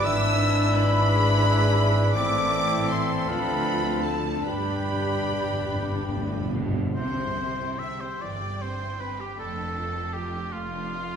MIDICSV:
0, 0, Header, 1, 13, 480
1, 0, Start_track
1, 0, Key_signature, 0, "major"
1, 0, Tempo, 700117
1, 42, Time_signature, 6, 3, 24, 8
1, 1483, Tempo, 753769
1, 2443, Tempo, 805369
1, 3403, Tempo, 831025
1, 5323, Tempo, 762389
1, 6283, Tempo, 831025
1, 6879, End_track
2, 0, Start_track
2, 0, Title_t, "Flute"
2, 0, Program_c, 0, 73
2, 33, Note_on_c, 0, 88, 127
2, 509, Note_on_c, 0, 83, 120
2, 520, Note_off_c, 0, 88, 0
2, 1322, Note_off_c, 0, 83, 0
2, 1479, Note_on_c, 0, 86, 127
2, 1949, Note_off_c, 0, 86, 0
2, 1952, Note_on_c, 0, 84, 83
2, 2200, Note_on_c, 0, 83, 105
2, 2210, Note_off_c, 0, 84, 0
2, 2681, Note_on_c, 0, 81, 83
2, 2690, Note_off_c, 0, 83, 0
2, 2907, Note_off_c, 0, 81, 0
2, 2911, Note_on_c, 0, 83, 95
2, 4099, Note_off_c, 0, 83, 0
2, 6879, End_track
3, 0, Start_track
3, 0, Title_t, "Violin section"
3, 0, Program_c, 1, 48
3, 34, Note_on_c, 1, 88, 124
3, 501, Note_off_c, 1, 88, 0
3, 512, Note_on_c, 1, 83, 127
3, 1473, Note_on_c, 1, 86, 116
3, 1482, Note_off_c, 1, 83, 0
3, 1946, Note_off_c, 1, 86, 0
3, 1950, Note_on_c, 1, 84, 97
3, 2194, Note_on_c, 1, 83, 103
3, 2196, Note_off_c, 1, 84, 0
3, 2664, Note_on_c, 1, 81, 100
3, 2673, Note_off_c, 1, 83, 0
3, 2906, Note_off_c, 1, 81, 0
3, 2912, Note_on_c, 1, 83, 94
3, 4123, Note_off_c, 1, 83, 0
3, 4370, Note_on_c, 1, 79, 63
3, 6490, Note_off_c, 1, 79, 0
3, 6511, Note_on_c, 1, 77, 66
3, 6879, Note_off_c, 1, 77, 0
3, 6879, End_track
4, 0, Start_track
4, 0, Title_t, "Violin section"
4, 0, Program_c, 2, 48
4, 24, Note_on_c, 2, 88, 107
4, 496, Note_off_c, 2, 88, 0
4, 506, Note_on_c, 2, 83, 114
4, 1459, Note_off_c, 2, 83, 0
4, 1468, Note_on_c, 2, 86, 112
4, 1944, Note_off_c, 2, 86, 0
4, 1950, Note_on_c, 2, 84, 85
4, 2196, Note_off_c, 2, 84, 0
4, 2196, Note_on_c, 2, 83, 95
4, 2662, Note_on_c, 2, 81, 77
4, 2674, Note_off_c, 2, 83, 0
4, 2904, Note_on_c, 2, 83, 84
4, 2911, Note_off_c, 2, 81, 0
4, 4096, Note_off_c, 2, 83, 0
4, 4369, Note_on_c, 2, 72, 76
4, 4828, Note_off_c, 2, 72, 0
4, 4851, Note_on_c, 2, 76, 68
4, 4971, Note_off_c, 2, 76, 0
4, 4978, Note_on_c, 2, 72, 69
4, 5094, Note_off_c, 2, 72, 0
4, 5103, Note_on_c, 2, 74, 81
4, 5330, Note_off_c, 2, 74, 0
4, 5331, Note_on_c, 2, 72, 76
4, 5570, Note_off_c, 2, 72, 0
4, 5572, Note_on_c, 2, 71, 67
4, 5688, Note_off_c, 2, 71, 0
4, 5690, Note_on_c, 2, 67, 59
4, 5806, Note_off_c, 2, 67, 0
4, 5812, Note_on_c, 2, 69, 72
4, 6278, Note_off_c, 2, 69, 0
4, 6286, Note_on_c, 2, 67, 67
4, 6511, Note_on_c, 2, 65, 77
4, 6512, Note_off_c, 2, 67, 0
4, 6879, Note_off_c, 2, 65, 0
4, 6879, End_track
5, 0, Start_track
5, 0, Title_t, "Oboe"
5, 0, Program_c, 3, 68
5, 35, Note_on_c, 3, 76, 103
5, 1452, Note_off_c, 3, 76, 0
5, 1481, Note_on_c, 3, 76, 89
5, 2193, Note_on_c, 3, 77, 85
5, 2203, Note_off_c, 3, 76, 0
5, 2744, Note_off_c, 3, 77, 0
5, 2914, Note_on_c, 3, 79, 81
5, 4149, Note_off_c, 3, 79, 0
5, 4366, Note_on_c, 3, 72, 92
5, 4851, Note_on_c, 3, 76, 83
5, 4859, Note_off_c, 3, 72, 0
5, 4975, Note_on_c, 3, 72, 78
5, 4984, Note_off_c, 3, 76, 0
5, 5096, Note_on_c, 3, 74, 84
5, 5104, Note_off_c, 3, 72, 0
5, 5327, Note_on_c, 3, 72, 76
5, 5336, Note_off_c, 3, 74, 0
5, 5575, Note_on_c, 3, 71, 73
5, 5585, Note_off_c, 3, 72, 0
5, 5700, Note_on_c, 3, 67, 68
5, 5710, Note_off_c, 3, 71, 0
5, 5811, Note_off_c, 3, 67, 0
5, 5817, Note_on_c, 3, 69, 85
5, 6286, Note_on_c, 3, 67, 78
5, 6294, Note_off_c, 3, 69, 0
5, 6510, Note_on_c, 3, 65, 96
5, 6518, Note_off_c, 3, 67, 0
5, 6879, Note_off_c, 3, 65, 0
5, 6879, End_track
6, 0, Start_track
6, 0, Title_t, "Clarinet"
6, 0, Program_c, 4, 71
6, 45, Note_on_c, 4, 76, 112
6, 510, Note_on_c, 4, 71, 111
6, 521, Note_off_c, 4, 76, 0
6, 1484, Note_on_c, 4, 74, 120
6, 1493, Note_off_c, 4, 71, 0
6, 1961, Note_off_c, 4, 74, 0
6, 1965, Note_on_c, 4, 72, 82
6, 2197, Note_on_c, 4, 71, 87
6, 2207, Note_off_c, 4, 72, 0
6, 2670, Note_on_c, 4, 69, 80
6, 2678, Note_off_c, 4, 71, 0
6, 2904, Note_on_c, 4, 71, 89
6, 2913, Note_off_c, 4, 69, 0
6, 4119, Note_off_c, 4, 71, 0
6, 6879, End_track
7, 0, Start_track
7, 0, Title_t, "Trumpet"
7, 0, Program_c, 5, 56
7, 0, Note_on_c, 5, 71, 88
7, 1278, Note_off_c, 5, 71, 0
7, 1475, Note_on_c, 5, 69, 90
7, 2891, Note_off_c, 5, 69, 0
7, 2910, Note_on_c, 5, 67, 72
7, 4147, Note_off_c, 5, 67, 0
7, 6879, End_track
8, 0, Start_track
8, 0, Title_t, "Viola section"
8, 0, Program_c, 6, 48
8, 0, Note_on_c, 6, 62, 87
8, 48, Note_on_c, 6, 64, 82
8, 745, Note_off_c, 6, 64, 0
8, 752, Note_off_c, 6, 62, 0
8, 753, Note_on_c, 6, 64, 88
8, 756, Note_on_c, 6, 68, 85
8, 1470, Note_off_c, 6, 64, 0
8, 1471, Note_off_c, 6, 68, 0
8, 1487, Note_on_c, 6, 64, 81
8, 1488, Note_on_c, 6, 60, 77
8, 2177, Note_off_c, 6, 64, 0
8, 2178, Note_off_c, 6, 60, 0
8, 2205, Note_on_c, 6, 60, 78
8, 2205, Note_on_c, 6, 65, 74
8, 2906, Note_off_c, 6, 60, 0
8, 2920, Note_off_c, 6, 65, 0
8, 2924, Note_on_c, 6, 62, 70
8, 2928, Note_on_c, 6, 67, 70
8, 4226, Note_off_c, 6, 62, 0
8, 4251, Note_off_c, 6, 67, 0
8, 4369, Note_on_c, 6, 60, 55
8, 4371, Note_on_c, 6, 52, 62
8, 4480, Note_off_c, 6, 52, 0
8, 4488, Note_on_c, 6, 55, 55
8, 4604, Note_off_c, 6, 60, 0
8, 4608, Note_off_c, 6, 55, 0
8, 4611, Note_on_c, 6, 60, 55
8, 4731, Note_off_c, 6, 60, 0
8, 4732, Note_on_c, 6, 64, 55
8, 4852, Note_off_c, 6, 64, 0
8, 4854, Note_on_c, 6, 60, 57
8, 4968, Note_on_c, 6, 55, 55
8, 4972, Note_off_c, 6, 60, 0
8, 5088, Note_off_c, 6, 55, 0
8, 5094, Note_on_c, 6, 52, 55
8, 5209, Note_off_c, 6, 52, 0
8, 5215, Note_on_c, 6, 55, 55
8, 5327, Note_off_c, 6, 55, 0
8, 5328, Note_on_c, 6, 60, 53
8, 5446, Note_on_c, 6, 64, 58
8, 5448, Note_off_c, 6, 60, 0
8, 5566, Note_off_c, 6, 64, 0
8, 5571, Note_on_c, 6, 60, 57
8, 5687, Note_off_c, 6, 60, 0
8, 5687, Note_on_c, 6, 55, 54
8, 5803, Note_on_c, 6, 62, 53
8, 5804, Note_off_c, 6, 55, 0
8, 5805, Note_on_c, 6, 57, 56
8, 5914, Note_off_c, 6, 57, 0
8, 5918, Note_off_c, 6, 62, 0
8, 5926, Note_on_c, 6, 62, 50
8, 6043, Note_off_c, 6, 62, 0
8, 6047, Note_on_c, 6, 65, 56
8, 6164, Note_off_c, 6, 65, 0
8, 6166, Note_on_c, 6, 69, 53
8, 6285, Note_off_c, 6, 69, 0
8, 6289, Note_on_c, 6, 65, 59
8, 6399, Note_off_c, 6, 65, 0
8, 6405, Note_on_c, 6, 62, 51
8, 6515, Note_off_c, 6, 62, 0
8, 6518, Note_on_c, 6, 57, 58
8, 6633, Note_off_c, 6, 57, 0
8, 6642, Note_on_c, 6, 62, 56
8, 6761, Note_off_c, 6, 62, 0
8, 6765, Note_on_c, 6, 65, 54
8, 6879, Note_off_c, 6, 65, 0
8, 6879, End_track
9, 0, Start_track
9, 0, Title_t, "Bassoon"
9, 0, Program_c, 7, 70
9, 39, Note_on_c, 7, 62, 100
9, 1480, Note_on_c, 7, 60, 89
9, 1490, Note_off_c, 7, 62, 0
9, 2190, Note_off_c, 7, 60, 0
9, 2194, Note_on_c, 7, 60, 82
9, 2734, Note_off_c, 7, 60, 0
9, 2915, Note_on_c, 7, 62, 77
9, 4149, Note_off_c, 7, 62, 0
9, 6879, End_track
10, 0, Start_track
10, 0, Title_t, "French horn section"
10, 0, Program_c, 8, 60
10, 41, Note_on_c, 8, 52, 94
10, 41, Note_on_c, 8, 62, 93
10, 1455, Note_off_c, 8, 62, 0
10, 1484, Note_on_c, 8, 60, 90
10, 2187, Note_off_c, 8, 60, 0
10, 2200, Note_off_c, 8, 52, 0
10, 2206, Note_on_c, 8, 53, 77
10, 2207, Note_on_c, 8, 62, 78
10, 2920, Note_off_c, 8, 53, 0
10, 2923, Note_on_c, 8, 55, 75
10, 4153, Note_off_c, 8, 55, 0
10, 4176, Note_off_c, 8, 62, 0
10, 6879, End_track
11, 0, Start_track
11, 0, Title_t, "Cello section"
11, 0, Program_c, 10, 48
11, 39, Note_on_c, 10, 44, 102
11, 1454, Note_off_c, 10, 44, 0
11, 1480, Note_on_c, 10, 45, 87
11, 2174, Note_off_c, 10, 45, 0
11, 2198, Note_on_c, 10, 38, 77
11, 2911, Note_on_c, 10, 43, 77
11, 2916, Note_off_c, 10, 38, 0
11, 3575, Note_off_c, 10, 43, 0
11, 3637, Note_on_c, 10, 43, 77
11, 3865, Note_off_c, 10, 43, 0
11, 3881, Note_on_c, 10, 45, 78
11, 4125, Note_off_c, 10, 45, 0
11, 4127, Note_on_c, 10, 47, 77
11, 4366, Note_off_c, 10, 47, 0
11, 4368, Note_on_c, 10, 48, 75
11, 4971, Note_off_c, 10, 48, 0
11, 5093, Note_on_c, 10, 43, 64
11, 5686, Note_off_c, 10, 43, 0
11, 5807, Note_on_c, 10, 41, 70
11, 6397, Note_off_c, 10, 41, 0
11, 6516, Note_on_c, 10, 41, 66
11, 6879, Note_off_c, 10, 41, 0
11, 6879, End_track
12, 0, Start_track
12, 0, Title_t, "Timpani"
12, 0, Program_c, 11, 47
12, 2915, Note_on_c, 11, 43, 48
12, 2953, Note_off_c, 11, 43, 0
12, 3054, Note_on_c, 11, 43, 48
12, 3094, Note_off_c, 11, 43, 0
12, 3101, Note_on_c, 11, 43, 48
12, 3140, Note_off_c, 11, 43, 0
12, 3147, Note_on_c, 11, 43, 50
12, 3184, Note_off_c, 11, 43, 0
12, 3191, Note_on_c, 11, 43, 55
12, 3229, Note_off_c, 11, 43, 0
12, 3236, Note_on_c, 11, 43, 53
12, 3271, Note_off_c, 11, 43, 0
12, 3278, Note_on_c, 11, 43, 53
12, 3314, Note_off_c, 11, 43, 0
12, 3321, Note_on_c, 11, 43, 55
12, 3362, Note_off_c, 11, 43, 0
12, 3369, Note_on_c, 11, 43, 60
12, 3405, Note_off_c, 11, 43, 0
12, 3411, Note_on_c, 11, 43, 63
12, 3447, Note_off_c, 11, 43, 0
12, 3454, Note_on_c, 11, 43, 65
12, 3494, Note_off_c, 11, 43, 0
12, 3501, Note_on_c, 11, 43, 69
12, 3540, Note_off_c, 11, 43, 0
12, 3547, Note_on_c, 11, 43, 72
12, 3585, Note_off_c, 11, 43, 0
12, 3592, Note_on_c, 11, 43, 75
12, 3629, Note_off_c, 11, 43, 0
12, 3636, Note_on_c, 11, 43, 72
12, 3668, Note_off_c, 11, 43, 0
12, 3675, Note_on_c, 11, 43, 81
12, 3717, Note_off_c, 11, 43, 0
12, 3724, Note_on_c, 11, 43, 81
12, 3763, Note_off_c, 11, 43, 0
12, 3769, Note_on_c, 11, 43, 77
12, 3815, Note_off_c, 11, 43, 0
12, 3821, Note_on_c, 11, 43, 87
12, 3859, Note_off_c, 11, 43, 0
12, 3865, Note_on_c, 11, 43, 91
12, 3905, Note_off_c, 11, 43, 0
12, 3912, Note_on_c, 11, 43, 91
12, 3955, Note_off_c, 11, 43, 0
12, 3963, Note_on_c, 11, 43, 100
12, 4000, Note_off_c, 11, 43, 0
12, 4007, Note_on_c, 11, 43, 99
12, 4046, Note_off_c, 11, 43, 0
12, 4053, Note_on_c, 11, 43, 102
12, 4088, Note_off_c, 11, 43, 0
12, 4095, Note_on_c, 11, 43, 106
12, 4126, Note_off_c, 11, 43, 0
12, 4133, Note_on_c, 11, 43, 120
12, 4174, Note_off_c, 11, 43, 0
12, 4181, Note_on_c, 11, 43, 117
12, 4219, Note_off_c, 11, 43, 0
12, 4226, Note_on_c, 11, 43, 115
12, 4262, Note_off_c, 11, 43, 0
12, 4269, Note_on_c, 11, 43, 115
12, 4308, Note_off_c, 11, 43, 0
12, 4315, Note_on_c, 11, 43, 114
12, 4359, Note_off_c, 11, 43, 0
12, 4362, Note_on_c, 11, 48, 81
12, 5065, Note_off_c, 11, 48, 0
12, 6879, End_track
13, 0, Start_track
13, 0, Title_t, "Double bass section"
13, 0, Program_c, 12, 48
13, 40, Note_on_c, 12, 32, 90
13, 1454, Note_off_c, 12, 32, 0
13, 1479, Note_on_c, 12, 33, 86
13, 2173, Note_off_c, 12, 33, 0
13, 2197, Note_on_c, 12, 38, 78
13, 2912, Note_on_c, 12, 31, 68
13, 2916, Note_off_c, 12, 38, 0
13, 4220, Note_off_c, 12, 31, 0
13, 4368, Note_on_c, 12, 36, 65
13, 4971, Note_off_c, 12, 36, 0
13, 5093, Note_on_c, 12, 31, 64
13, 5686, Note_off_c, 12, 31, 0
13, 5805, Note_on_c, 12, 29, 63
13, 6397, Note_off_c, 12, 29, 0
13, 6517, Note_on_c, 12, 29, 70
13, 6879, Note_off_c, 12, 29, 0
13, 6879, End_track
0, 0, End_of_file